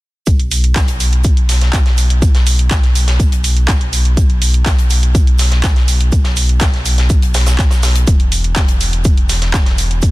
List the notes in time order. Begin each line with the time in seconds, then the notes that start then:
0.27 B1, kick, closed hi-hat, shaker
0.40 closed hi-hat
0.51 open hi-hat, shaker
0.64 closed hi-hat
0.76 kick, snare, clap, closed hi-hat, shaker
0.88 closed hi-hat
1.00 open hi-hat, shaker
1.13 closed hi-hat
1.24 kick, closed hi-hat, shaker
1.37 closed hi-hat
1.49 snare, open hi-hat, shaker
1.61 snare, closed hi-hat
1.73 kick, snare, clap, closed hi-hat, shaker
1.86 snare, closed hi-hat
1.98 open hi-hat, shaker
2.10 closed hi-hat
2.22 kick, closed hi-hat, shaker
2.35 snare, closed hi-hat
2.47 open hi-hat, shaker
2.59 closed hi-hat
2.71 kick, snare, clap, closed hi-hat, shaker
2.83 snare, closed hi-hat
2.95 open hi-hat, shaker
3.08 snare, closed hi-hat
3.20 kick, closed hi-hat, shaker
3.32 closed hi-hat
3.44 open hi-hat, shaker
3.57 closed hi-hat
3.67 kick, snare, clap, closed hi-hat, shaker
3.81 closed hi-hat
3.93 open hi-hat, shaker
4.05 closed hi-hat
4.17 kick, closed hi-hat, shaker
4.30 closed hi-hat
4.42 open hi-hat, shaker
4.54 closed hi-hat
4.66 kick, snare, clap, closed hi-hat, shaker
4.79 closed hi-hat
4.90 open hi-hat, shaker
5.03 closed hi-hat
5.15 kick, closed hi-hat, shaker
5.27 closed hi-hat
5.38 snare, open hi-hat, shaker
5.51 snare, closed hi-hat
5.63 kick, snare, clap, closed hi-hat, shaker
5.76 snare, closed hi-hat
5.88 open hi-hat, shaker
6.00 closed hi-hat
6.12 kick, closed hi-hat, shaker
6.24 snare, closed hi-hat
6.36 open hi-hat, shaker
6.49 closed hi-hat
6.61 kick, snare, clap, closed hi-hat, shaker
6.74 snare, closed hi-hat
6.86 open hi-hat, shaker
6.98 snare, closed hi-hat
7.10 kick, closed hi-hat, shaker
7.22 closed hi-hat
7.34 snare, open hi-hat, shaker
7.47 snare, closed hi-hat, shaker
7.58 kick, snare, clap, closed hi-hat, shaker
7.71 snare, closed hi-hat, shaker
7.83 snare, open hi-hat, shaker
7.95 closed hi-hat
8.07 E1, kick, closed hi-hat, shaker
8.20 closed hi-hat
8.32 open hi-hat, shaker
8.44 closed hi-hat
8.56 kick, snare, clap, closed hi-hat, shaker
8.68 closed hi-hat
8.81 open hi-hat, shaker
8.93 closed hi-hat
9.05 kick, closed hi-hat, shaker
9.17 closed hi-hat
9.29 snare, open hi-hat, shaker
9.42 snare, closed hi-hat
9.54 kick, snare, clap, closed hi-hat, shaker
9.66 snare, closed hi-hat
9.78 open hi-hat, shaker
9.91 closed hi-hat
10.02 kick, closed hi-hat, shaker